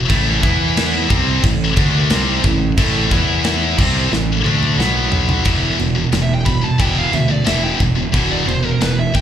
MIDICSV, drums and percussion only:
0, 0, Header, 1, 2, 480
1, 0, Start_track
1, 0, Key_signature, 1, "minor"
1, 0, Tempo, 670391
1, 72, Time_signature, 4, 2, 24, 8
1, 6595, End_track
2, 0, Start_track
2, 0, Title_t, "Drums"
2, 70, Note_on_c, 9, 36, 118
2, 72, Note_on_c, 9, 49, 86
2, 142, Note_off_c, 9, 36, 0
2, 144, Note_off_c, 9, 49, 0
2, 310, Note_on_c, 9, 36, 113
2, 311, Note_on_c, 9, 49, 65
2, 382, Note_off_c, 9, 36, 0
2, 382, Note_off_c, 9, 49, 0
2, 551, Note_on_c, 9, 49, 93
2, 555, Note_on_c, 9, 38, 117
2, 622, Note_off_c, 9, 49, 0
2, 627, Note_off_c, 9, 38, 0
2, 790, Note_on_c, 9, 36, 98
2, 790, Note_on_c, 9, 49, 62
2, 862, Note_off_c, 9, 36, 0
2, 862, Note_off_c, 9, 49, 0
2, 1027, Note_on_c, 9, 49, 94
2, 1030, Note_on_c, 9, 36, 103
2, 1099, Note_off_c, 9, 49, 0
2, 1101, Note_off_c, 9, 36, 0
2, 1263, Note_on_c, 9, 49, 68
2, 1268, Note_on_c, 9, 36, 117
2, 1335, Note_off_c, 9, 49, 0
2, 1340, Note_off_c, 9, 36, 0
2, 1503, Note_on_c, 9, 49, 90
2, 1508, Note_on_c, 9, 38, 117
2, 1575, Note_off_c, 9, 49, 0
2, 1579, Note_off_c, 9, 38, 0
2, 1744, Note_on_c, 9, 49, 62
2, 1748, Note_on_c, 9, 36, 85
2, 1816, Note_off_c, 9, 49, 0
2, 1820, Note_off_c, 9, 36, 0
2, 1987, Note_on_c, 9, 49, 94
2, 1989, Note_on_c, 9, 36, 116
2, 2059, Note_off_c, 9, 49, 0
2, 2060, Note_off_c, 9, 36, 0
2, 2227, Note_on_c, 9, 49, 64
2, 2229, Note_on_c, 9, 36, 115
2, 2298, Note_off_c, 9, 49, 0
2, 2301, Note_off_c, 9, 36, 0
2, 2464, Note_on_c, 9, 49, 76
2, 2469, Note_on_c, 9, 38, 114
2, 2536, Note_off_c, 9, 49, 0
2, 2540, Note_off_c, 9, 38, 0
2, 2709, Note_on_c, 9, 49, 95
2, 2711, Note_on_c, 9, 36, 101
2, 2781, Note_off_c, 9, 49, 0
2, 2782, Note_off_c, 9, 36, 0
2, 2957, Note_on_c, 9, 38, 73
2, 3029, Note_off_c, 9, 38, 0
2, 3194, Note_on_c, 9, 47, 81
2, 3266, Note_off_c, 9, 47, 0
2, 3313, Note_on_c, 9, 47, 71
2, 3385, Note_off_c, 9, 47, 0
2, 3439, Note_on_c, 9, 38, 91
2, 3511, Note_off_c, 9, 38, 0
2, 3665, Note_on_c, 9, 43, 98
2, 3736, Note_off_c, 9, 43, 0
2, 3786, Note_on_c, 9, 43, 96
2, 3858, Note_off_c, 9, 43, 0
2, 3901, Note_on_c, 9, 49, 81
2, 3907, Note_on_c, 9, 36, 116
2, 3973, Note_off_c, 9, 49, 0
2, 3978, Note_off_c, 9, 36, 0
2, 4149, Note_on_c, 9, 49, 62
2, 4221, Note_off_c, 9, 49, 0
2, 4385, Note_on_c, 9, 49, 82
2, 4389, Note_on_c, 9, 38, 101
2, 4456, Note_off_c, 9, 49, 0
2, 4461, Note_off_c, 9, 38, 0
2, 4624, Note_on_c, 9, 49, 55
2, 4626, Note_on_c, 9, 36, 78
2, 4696, Note_off_c, 9, 49, 0
2, 4698, Note_off_c, 9, 36, 0
2, 4866, Note_on_c, 9, 36, 113
2, 4866, Note_on_c, 9, 49, 80
2, 4938, Note_off_c, 9, 36, 0
2, 4938, Note_off_c, 9, 49, 0
2, 5106, Note_on_c, 9, 49, 63
2, 5178, Note_off_c, 9, 49, 0
2, 5344, Note_on_c, 9, 49, 78
2, 5348, Note_on_c, 9, 38, 117
2, 5415, Note_off_c, 9, 49, 0
2, 5419, Note_off_c, 9, 38, 0
2, 5585, Note_on_c, 9, 49, 53
2, 5587, Note_on_c, 9, 36, 76
2, 5657, Note_off_c, 9, 49, 0
2, 5658, Note_off_c, 9, 36, 0
2, 5827, Note_on_c, 9, 36, 113
2, 5828, Note_on_c, 9, 49, 80
2, 5899, Note_off_c, 9, 36, 0
2, 5899, Note_off_c, 9, 49, 0
2, 6075, Note_on_c, 9, 49, 59
2, 6147, Note_off_c, 9, 49, 0
2, 6310, Note_on_c, 9, 49, 73
2, 6314, Note_on_c, 9, 38, 106
2, 6381, Note_off_c, 9, 49, 0
2, 6386, Note_off_c, 9, 38, 0
2, 6550, Note_on_c, 9, 36, 80
2, 6551, Note_on_c, 9, 49, 52
2, 6595, Note_off_c, 9, 36, 0
2, 6595, Note_off_c, 9, 49, 0
2, 6595, End_track
0, 0, End_of_file